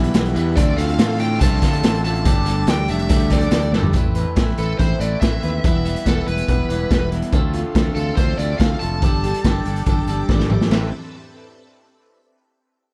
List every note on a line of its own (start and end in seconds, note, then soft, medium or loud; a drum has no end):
0.00 0.11 B1 loud
0.00 0.12 E3 loud
0.00 0.13 G3 medium
0.00 0.14 B3 medium
0.00 0.14 E4 medium
0.00 0.55 G4 medium
0.00 0.14 B4 loud
0.00 0.55 B4 medium
0.00 0.55 E5 medium
0.00 0.55 B5 medium
0.00 closed hi-hat medium
0.14 0.34 B1 loud
0.14 0.34 E3 medium
0.14 0.35 G3 medium
0.14 0.35 B3 loud
0.14 0.36 E4 loud
0.14 0.36 B4 medium
0.14 snare loud
0.14 closed hi-hat loud
0.25 closed hi-hat medium
0.35 0.57 E2 medium
0.35 0.55 E3 medium
0.35 0.56 G3 medium
0.35 0.56 B3 medium
0.35 0.56 E4 loud
0.35 0.56 B4 loud
0.35 closed hi-hat medium
0.56 0.76 D2 loud
0.56 0.76 D3 medium
0.56 0.77 A3 loud
0.56 0.77 C4 loud
0.56 0.77 F4 medium
0.56 3.91 A4 medium
0.56 0.79 A4 loud
0.56 0.77 D5 loud
0.56 2.24 D5 medium
0.56 2.24 F5 medium
0.56 2.24 C6 medium
0.56 kick loud
0.56 closed hi-hat loud
0.77 0.97 D2 loud
0.77 0.98 D3 medium
0.77 0.99 A3 medium
0.77 0.98 C4 medium
0.77 0.99 F4 medium
0.77 1.00 A4 loud
0.77 1.17 F5 loud
0.77 closed hi-hat medium
0.89 closed hi-hat medium
0.99 1.37 A2 loud
0.99 1.18 D3 medium
0.99 1.19 A3 medium
0.99 1.19 C4 medium
0.99 1.19 F4 medium
0.99 1.20 A4 loud
0.99 snare loud
0.99 closed hi-hat loud
1.19 1.40 D3 medium
1.19 1.41 A3 medium
1.19 1.41 C4 medium
1.19 1.41 F4 medium
1.19 1.43 A4 medium
1.19 1.40 G5 loud
1.19 closed hi-hat medium
1.40 1.60 C2 loud
1.40 1.61 D3 loud
1.40 1.62 A3 loud
1.40 1.62 C4 loud
1.40 1.63 F4 loud
1.40 1.64 A4 loud
1.40 2.00 A5 loud
1.40 kick loud
1.40 closed hi-hat loud
1.62 1.81 D3 medium
1.62 1.82 D3 medium
1.62 1.84 A3 loud
1.62 1.83 C4 loud
1.62 1.84 F4 medium
1.62 1.85 A4 loud
1.62 kick medium
1.62 snare soft
1.62 closed hi-hat medium
1.73 closed hi-hat medium
1.83 2.27 A1 loud
1.83 2.04 D3 medium
1.83 2.05 A3 medium
1.83 2.04 C4 loud
1.83 2.05 F4 loud
1.83 2.06 A4 loud
1.83 snare loud
1.83 closed hi-hat loud
1.94 closed hi-hat medium
2.04 2.24 D3 medium
2.04 2.26 A3 loud
2.04 2.25 C4 loud
2.04 2.25 F4 loud
2.04 2.27 A4 medium
2.04 2.69 A5 loud
2.04 closed hi-hat medium
2.15 closed hi-hat medium
2.25 2.64 G1 loud
2.25 2.45 G3 loud
2.25 2.45 A3 loud
2.25 2.46 D4 loud
2.25 2.47 G4 loud
2.25 2.47 A4 loud
2.25 3.93 D5 medium
2.25 3.93 G5 medium
2.25 3.93 D6 medium
2.25 kick loud
2.25 closed hi-hat loud
2.46 2.66 G3 medium
2.46 2.66 A3 loud
2.46 2.67 D4 medium
2.46 2.68 G4 medium
2.46 2.68 A4 medium
2.46 closed hi-hat medium
2.67 2.87 D2 loud
2.67 2.88 G3 medium
2.67 2.87 A3 medium
2.67 2.89 D4 medium
2.67 2.89 G4 medium
2.67 2.89 A4 medium
2.67 2.88 G5 loud
2.67 snare loud
2.67 closed hi-hat loud
2.88 3.08 F1 medium
2.88 3.09 G3 medium
2.88 3.08 A3 medium
2.88 3.10 D4 medium
2.88 3.10 G4 medium
2.88 3.10 A4 medium
2.88 3.29 E5 loud
2.88 closed hi-hat medium
2.99 closed hi-hat soft
3.09 3.48 D2 loud
3.09 3.31 G3 loud
3.09 3.29 A3 loud
3.09 3.31 D4 loud
3.09 3.32 G4 loud
3.09 3.32 A4 loud
3.09 kick loud
3.09 closed hi-hat loud
3.20 closed hi-hat soft
3.30 3.52 G3 medium
3.30 3.51 A3 medium
3.30 3.52 D4 medium
3.30 3.53 G4 medium
3.30 3.53 A4 loud
3.30 3.70 D5 medium
3.30 kick medium
3.30 snare soft
3.30 closed hi-hat medium
3.40 closed hi-hat soft
3.51 3.71 D2 medium
3.51 3.73 G3 medium
3.51 3.72 A3 medium
3.51 3.74 D4 medium
3.51 3.74 G4 loud
3.51 3.74 A4 medium
3.51 snare loud
3.51 closed hi-hat medium
3.61 closed hi-hat medium
3.72 3.92 G1 medium
3.72 3.93 G3 medium
3.72 3.93 A3 medium
3.72 3.94 D4 medium
3.72 3.94 G4 medium
3.72 3.94 A4 loud
3.72 snare medium
3.83 floor tom medium
3.93 4.24 A1 medium
3.93 5.00 A2 medium
3.93 4.36 A3 medium
3.93 4.18 C4 medium
3.93 4.17 E4 medium
3.93 kick loud
3.93 closed hi-hat medium
3.97 4.15 B4 medium
4.15 4.39 E4 medium
4.15 4.39 B4 medium
4.15 closed hi-hat medium
4.19 4.37 C4 medium
4.36 4.52 A1 medium
4.36 4.77 A3 medium
4.36 4.60 C4 medium
4.36 4.60 E4 medium
4.36 4.58 B4 medium
4.36 kick loud
4.36 snare loud
4.36 closed hi-hat medium
4.49 snare soft
4.58 4.73 A1 medium
4.58 4.79 C4 soft
4.58 4.79 E4 medium
4.58 4.78 A4 medium
4.58 4.80 B4 medium
4.58 closed hi-hat medium
4.78 4.94 A1 medium
4.78 5.02 A3 medium
4.78 5.01 C4 medium
4.78 5.00 E4 medium
4.78 4.99 B4 medium
4.78 4.98 C5 medium
4.78 kick loud
4.78 closed hi-hat medium
4.99 5.15 A1 medium
4.99 5.63 A3 medium
4.99 5.22 C4 medium
4.99 5.23 E4 medium
4.99 5.23 B4 medium
4.99 5.20 D5 loud
4.99 closed hi-hat medium
5.03 5.21 A3 medium
5.21 5.37 A1 medium
5.21 5.63 A3 medium
5.21 5.44 C4 medium
5.21 5.43 E4 medium
5.21 5.42 B4 medium
5.21 5.64 E5 loud
5.21 kick loud
5.21 snare loud
5.21 closed hi-hat medium
5.43 5.58 D#2 medium
5.43 5.64 C4 medium
5.43 5.63 E4 medium
5.43 5.63 B4 medium
5.43 closed hi-hat medium
5.64 5.94 E1 medium
5.64 6.04 E3 medium
5.64 6.05 G3 medium
5.64 5.86 B3 medium
5.64 5.85 E4 medium
5.64 5.83 B4 medium
5.64 6.04 E5 medium
5.64 kick loud
5.64 closed hi-hat medium
5.85 6.06 B3 medium
5.85 6.07 E4 medium
5.85 6.07 B4 medium
5.85 closed hi-hat medium
5.96 closed hi-hat medium
6.06 6.21 E1 loud
6.06 6.48 E3 medium
6.06 6.46 G3 medium
6.06 6.29 B3 medium
6.06 6.28 E4 medium
6.06 6.27 A4 medium
6.06 6.26 B4 medium
6.06 kick loud
6.06 snare medium
6.06 closed hi-hat medium
6.27 6.42 E1 medium
6.27 6.48 B3 medium
6.27 6.48 E4 medium
6.27 6.49 B4 medium
6.27 7.08 B4 medium
6.27 closed hi-hat medium
6.37 closed hi-hat medium
6.48 6.63 E1 medium
6.48 6.70 G3 medium
6.48 6.69 B3 medium
6.48 6.69 E4 medium
6.48 6.68 B4 medium
6.48 kick loud
6.48 closed hi-hat medium
6.69 6.84 E1 medium
6.69 7.13 E3 medium
6.69 6.88 G3 medium
6.69 6.89 B3 medium
6.69 6.90 E4 medium
6.69 6.91 B4 medium
6.69 closed hi-hat medium
6.89 7.21 E1 medium
6.89 7.31 G3 medium
6.89 7.13 B3 medium
6.89 7.11 E4 medium
6.89 7.09 B4 medium
6.89 kick loud
6.89 snare loud
6.89 closed hi-hat medium
7.11 7.33 B3 medium
7.11 7.32 E4 medium
7.11 7.31 B4 medium
7.11 closed hi-hat medium
7.22 closed hi-hat medium
7.31 7.63 D2 medium
7.31 7.74 D3 medium
7.31 7.75 A3 medium
7.31 7.56 C4 loud
7.31 7.55 F4 loud
7.31 9.00 A4 medium
7.31 10.68 D5 medium
7.31 9.00 F5 medium
7.31 9.00 C6 medium
7.31 kick loud
7.31 closed hi-hat medium
7.35 7.53 A4 loud
7.53 7.75 C4 medium
7.53 7.76 F4 medium
7.53 7.77 A4 medium
7.53 closed hi-hat medium
7.75 7.90 D2 medium
7.75 8.17 D3 medium
7.75 8.17 A3 medium
7.75 7.98 C4 medium
7.75 7.96 F4 medium
7.75 7.96 A4 loud
7.75 kick loud
7.75 snare loud
7.75 closed hi-hat medium
7.95 8.11 D2 medium
7.95 8.19 F4 medium
7.95 8.16 A4 medium
7.95 8.20 A4 medium
7.95 closed hi-hat medium
7.99 8.18 C4 medium
8.16 8.32 D2 medium
8.16 8.41 A3 medium
8.16 8.39 C4 medium
8.16 8.39 F4 medium
8.16 8.39 A4 medium
8.16 8.39 C5 medium
8.16 kick loud
8.16 closed hi-hat medium
8.37 8.54 D2 medium
8.37 8.60 C4 medium
8.37 8.61 F4 medium
8.37 8.63 A4 medium
8.37 8.58 D5 medium
8.37 closed hi-hat medium
8.42 8.83 D3 medium
8.42 8.60 A3 medium
8.58 8.75 D2 medium
8.58 9.03 A3 medium
8.58 8.83 C4 medium
8.58 8.82 F4 medium
8.58 8.79 F5 loud
8.58 kick loud
8.58 snare loud
8.58 closed hi-hat medium
8.63 8.80 A4 medium
8.79 9.02 F1 medium
8.79 9.02 F4 medium
8.79 9.05 A4 medium
8.79 10.24 A5 loud
8.79 closed hi-hat medium
8.84 9.02 C4 medium
9.02 9.32 G1 medium
9.02 9.44 G3 loud
9.02 9.25 D4 medium
9.02 9.24 G4 loud
9.02 10.69 A4 medium
9.02 9.22 A4 loud
9.02 10.70 G5 medium
9.02 10.70 D6 medium
9.02 kick loud
9.02 closed hi-hat medium
9.23 9.44 D4 medium
9.23 9.46 G4 medium
9.23 9.47 A4 medium
9.23 closed hi-hat medium
9.34 closed hi-hat medium
9.44 9.60 G1 loud
9.44 9.86 G3 medium
9.44 9.68 D4 medium
9.44 9.67 G4 medium
9.44 9.65 A4 medium
9.44 kick loud
9.44 snare loud
9.44 closed hi-hat medium
9.65 9.81 G1 medium
9.65 9.88 G4 medium
9.65 9.89 A4 medium
9.65 closed hi-hat medium
9.70 9.87 D4 medium
9.76 closed hi-hat medium
9.86 10.02 G1 loud
9.86 10.10 G3 medium
9.86 10.09 D4 medium
9.86 10.08 G4 medium
9.86 kick loud
9.86 closed hi-hat medium
9.90 10.07 A4 loud
10.07 10.22 G1 medium
10.07 10.29 D4 medium
10.07 10.30 G4 medium
10.07 10.31 A4 medium
10.07 closed hi-hat medium
10.11 10.28 G3 medium
10.28 10.59 G#1 loud
10.28 10.70 G3 medium
10.28 10.70 A3 medium
10.28 10.52 D4 medium
10.28 10.51 G4 medium
10.28 10.49 A4 medium
10.28 kick loud
10.28 snare medium
10.40 snare medium
10.50 10.72 D4 medium
10.50 10.71 G4 medium
10.50 10.70 A4 medium
10.50 mid tom loud
10.61 snare medium
10.70 10.90 A1 medium
10.70 10.88 A2 loud
10.70 10.88 E3 loud
10.70 10.88 A3 medium
10.70 10.91 C4 medium
10.70 10.89 C4 loud
10.70 10.89 E4 loud
10.70 10.90 A4 medium
10.70 10.91 B4 medium
10.70 10.89 B4 loud
10.70 10.91 E5 medium
10.70 snare loud
10.70 china medium